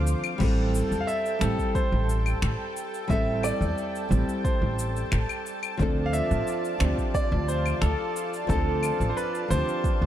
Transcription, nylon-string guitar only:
Already playing: F3 C4 D4 A4
0.38 G3 C4 E4
0.43 A4
1.39 G3 C4 E4
1.44 G4
3.08 G3 C4 E4
3.12 A4
4.09 G3 C4 E4
4.14 G4
5.77 F3 C4 D4
5.82 A4
6.79 F3 C4 D4
6.84 G4
8.47 F3 C4 D4
8.52 A4
9.48 F3 C4 D4
9.53 G4

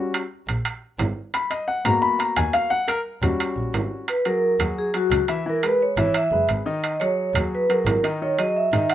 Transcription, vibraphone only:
4.09 B4
4.27 A#4
4.78 G#4
4.97 F#4
5.49 A#4
5.66 B4
5.82 C#5
6.16 E5
6.83 D#5
7.00 C#5
7.55 B4
7.71 A#4
8.22 C#5
8.39 D#5
8.57 E5
8.90 F#5

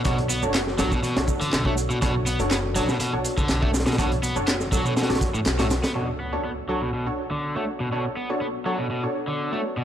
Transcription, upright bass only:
0.05 B1
0.43 F#1
0.79 B1
1.16 B1
1.41 muted upright bass stroke
1.53 B1
2.02 B1
2.40 F#1
2.76 B1
3.00 muted upright bass stroke
3.13 B1
3.38 muted upright bass stroke
3.50 B1
3.98 B1
4.36 F#1
4.72 B1
5.10 B1
5.34 muted upright bass stroke
5.46 B1

